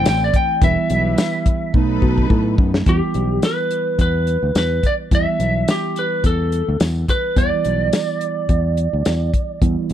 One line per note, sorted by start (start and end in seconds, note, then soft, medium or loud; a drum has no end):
0.00 0.59 E3 medium
0.00 0.60 A3 medium
0.00 0.60 C4 medium
0.00 0.40 E4 medium
0.00 0.60 E4 medium
0.00 0.40 A4 medium
0.00 0.40 C5 medium
0.05 0.29 A1 medium
0.05 0.22 G5 loud
0.05 snare loud
0.05 closed hi-hat medium
0.05 tambourine loud
0.24 0.35 D5 medium
0.33 0.62 G5 loud
0.33 kick medium
0.33 closed hi-hat medium
0.61 0.75 E1 loud
0.61 1.72 E3 medium
0.61 1.72 G3 medium
0.61 1.72 B3 medium
0.61 0.77 E4 medium
0.61 1.72 E4 medium
0.61 0.77 G4 medium
0.61 0.78 B4 medium
0.61 1.72 E5 medium
0.61 kick loud
0.61 closed hi-hat medium
0.89 1.14 B1 loud
0.89 1.46 E4 medium
0.89 1.46 G4 medium
0.89 1.47 B4 medium
0.89 closed hi-hat medium
1.18 snare loud
1.18 closed hi-hat medium
1.18 tambourine loud
1.46 kick medium
1.46 closed hi-hat medium
1.73 1.98 B1 medium
1.73 2.84 F#3 medium
1.73 2.85 A3 medium
1.73 2.85 B3 medium
1.73 2.64 D#4 medium
1.73 2.85 D#4 medium
1.73 2.65 A4 medium
1.73 2.65 B4 loud
1.73 kick medium
2.02 2.28 B2 medium
2.02 kick medium
2.18 kick medium
2.30 2.56 A2 medium
2.30 kick medium
2.58 2.84 F#2 medium
2.58 kick loud
2.74 snare medium
2.86 3.00 E2 medium
2.86 5.08 E3 medium
2.86 5.08 G3 medium
2.86 5.08 B3 medium
2.86 5.08 E4 medium
2.86 3.46 G4 medium
2.86 kick loud
2.86 closed hi-hat medium
3.14 3.38 B1 medium
3.14 closed hi-hat medium
3.42 4.00 B4 medium
3.42 snare loud
3.42 closed hi-hat medium
3.42 tambourine loud
3.71 closed hi-hat medium
3.99 4.36 E2 medium
3.99 4.57 B4 medium
3.99 kick medium
3.99 closed hi-hat medium
4.27 closed hi-hat soft
4.43 4.53 D2 medium
4.55 4.79 E2 medium
4.55 4.86 B4 medium
4.55 snare loud
4.55 closed hi-hat medium
4.55 tambourine loud
4.83 4.94 D5 medium
4.83 kick medium
4.83 closed hi-hat medium
5.11 5.25 E2 medium
5.11 7.33 E3 medium
5.11 7.33 G3 medium
5.11 7.33 B3 medium
5.11 7.33 E4 medium
5.11 5.71 E5 loud
5.11 kick loud
5.11 closed hi-hat medium
5.40 5.63 B1 medium
5.40 closed hi-hat medium
5.68 5.98 G4 medium
5.68 snare loud
5.68 closed hi-hat medium
5.68 tambourine loud
5.96 6.24 B4 medium
5.96 closed hi-hat medium
6.24 6.61 E2 medium
6.24 6.78 A4 medium
6.24 kick medium
6.24 closed hi-hat medium
6.52 closed hi-hat medium
6.68 6.79 D2 medium
6.80 7.04 E2 medium
6.80 snare loud
6.80 closed hi-hat medium
6.80 tambourine loud
7.08 7.39 B4 medium
7.08 kick medium
7.08 closed hi-hat medium
7.36 7.50 E2 loud
7.36 9.58 E3 medium
7.36 9.58 G3 medium
7.36 9.58 B3 medium
7.36 9.58 E4 medium
7.36 9.59 D5 loud
7.36 kick loud
7.36 closed hi-hat medium
7.64 7.89 B1 medium
7.64 closed hi-hat medium
7.93 snare loud
7.93 closed hi-hat medium
7.93 tambourine medium
8.21 closed hi-hat medium
8.49 8.86 E2 medium
8.49 kick medium
8.49 closed hi-hat medium
8.77 closed hi-hat medium
8.93 9.04 D2 medium
9.05 9.30 E2 medium
9.05 snare loud
9.05 closed hi-hat medium
9.05 tambourine loud
9.34 kick medium
9.34 closed hi-hat medium
9.61 9.75 E2 medium
9.61 9.93 E3 medium
9.61 9.93 G3 medium
9.61 9.93 B3 medium
9.61 9.93 E4 medium
9.61 kick loud
9.61 closed hi-hat medium
9.90 closed hi-hat soft